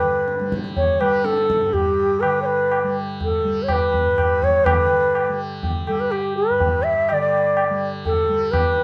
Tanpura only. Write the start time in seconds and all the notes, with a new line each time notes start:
Already playing: G2 D3 G3
0.41 G3
1.01 G3
1.61 G2
2.23 D3
2.84 G3
3.44 G3
4.06 G2
4.65 D3
5.29 G3
5.89 G3
6.50 G2
7.11 D3
7.70 G3
8.29 G3